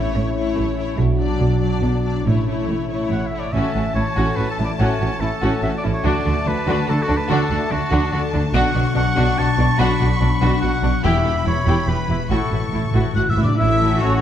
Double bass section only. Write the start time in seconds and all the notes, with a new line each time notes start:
0.14 A1
0.56 A1
0.98 B1
1.39 B1
1.81 B1
2.24 A1
2.67 A1
3.10 A1
3.53 A1
3.74 A1
3.95 A1
4.17 A1
4.37 A1
4.58 A1
4.79 A1
5.01 A1
5.21 A1
5.42 A1
5.63 A1
5.84 A1
6.05 D2
6.26 D2
6.46 D2
6.67 D2
6.89 D2
7.10 D2
7.30 D2
7.50 D2
7.72 D2
7.92 D2
8.13 D2
8.34 D2
8.54 B1
8.76 B1
8.96 B1
9.17 B1
9.38 B1
9.58 B1
9.79 B1
10.01 B1
10.21 B1
10.41 B1
10.62 B1
10.82 B1
11.04 E1
11.25 E1
11.45 E1
11.67 E1
11.87 E1
12.09 E1
12.30 A1
12.52 A1
12.73 A1
12.94 A1
13.16 A1
13.37 A1
13.58 A1
14.00 A1